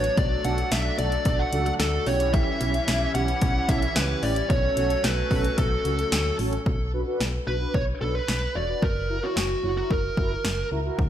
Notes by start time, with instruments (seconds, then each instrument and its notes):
Already playing: analog synth pad F#3 B3 D4, lead electric guitar C#5
0.04 closed hi-hat
0.17 fm bass B1, analog synth pad A3, lead electric guitar D5, kick, closed hi-hat
0.44 fm bass B1, analog polysynth D4 F#4 A4, lead electric guitar F#5, closed hi-hat
0.58 closed hi-hat
0.72 fm bass B1, lead electric guitar E5, snare, closed hi-hat
0.99 fm bass B1, analog polysynth D4 F#4 A4, lead electric guitar D5, closed hi-hat
1.12 closed hi-hat
1.25 fm bass B1, kick, closed hi-hat
1.39 lead electric guitar F#5
1.53 fm bass C#2, analog polysynth D4 F#4 A4, closed hi-hat
1.66 lead electric guitar F#5, closed hi-hat
1.80 fm bass D2, lead electric guitar A4, snare, closed hi-hat
2.07 fm bass B1, analog synth pad E3 G3 C#4, analog polysynth C#4 E4 G4, lead electric guitar C#5, open hi-hat
2.20 closed hi-hat
2.34 lead electric guitar E5, kick, closed hi-hat
2.61 fm bass B1, analog polysynth C#4 E4 G4, closed hi-hat
2.74 closed hi-hat
2.88 fm bass B1, snare, closed hi-hat
3.15 fm bass B1, analog polysynth C#4 E4 G4, lead electric guitar F#5, closed hi-hat
3.28 closed hi-hat
3.42 fm bass B1, kick, closed hi-hat
3.69 fm bass B1, analog polysynth C#4 E4 A4, lead electric guitar E5, kick, closed hi-hat
3.82 closed hi-hat
3.96 fm bass C#2, lead electric guitar B4, snare, closed hi-hat
4.23 fm bass A1, analog polysynth C#4 E4 G4, lead electric guitar D5, open hi-hat
4.36 closed hi-hat
4.50 fm bass B1, analog synth pad F#3 A3, lead electric guitar C#5, kick, closed hi-hat
4.77 fm bass B1, analog polysynth C#4 F#4 A4, closed hi-hat
4.90 closed hi-hat
5.04 fm bass B1, lead electric guitar B4, snare, closed hi-hat
5.31 fm bass B1, analog polysynth C#4 F#4 A4, kick, open hi-hat
5.45 closed hi-hat
5.58 fm bass B1, lead electric guitar A4, kick, closed hi-hat
5.85 fm bass C#2, analog polysynth C#4 F#4 A4, closed hi-hat
5.99 closed hi-hat
6.12 fm bass D2, snare, closed hi-hat
6.39 fm bass A1, analog polysynth C#4 F#4 A4, open hi-hat
6.53 closed hi-hat
6.66 fm bass B1, kick
6.93 analog polysynth D4 F#4 B4
7.07 analog polysynth D4 F#4 B4
7.20 fm bass B1, snare
7.47 fm bass B1, analog polysynth D4 F#4 B4, lead electric guitar B4
7.61 analog polysynth D4 F#4 B4
7.74 fm bass B1, lead electric guitar C#5, kick
8.01 fm bass B1, analog polysynth D4 F#4 B4, lead electric guitar A4
8.15 lead electric guitar B4
8.28 fm bass B1, snare
8.55 fm bass E1, analog polysynth D4 F#4 C#5, lead electric guitar D5
8.69 analog polysynth D4 F#4 B4
8.82 fm bass F#1, lead electric guitar A#4, kick
9.09 analog polysynth E4 F#4 A#4
9.23 analog polysynth E4 F#4 C#5, lead electric guitar F#4
9.37 fm bass F#1, lead electric guitar F#4, snare
9.63 fm bass F#1, analog polysynth E4 F#4 C#5
9.77 analog polysynth E4 F#4 A#4, lead electric guitar F#4
9.91 fm bass F#1, lead electric guitar A#4, kick
10.17 fm bass F#1, analog polysynth E4 F#4 A#4, kick
10.45 fm bass F#1, snare
10.72 fm bass C#2, analog polysynth E4 F#4 A#4
10.85 analog polysynth E4 F#4 A#4
10.99 fm bass D2, kick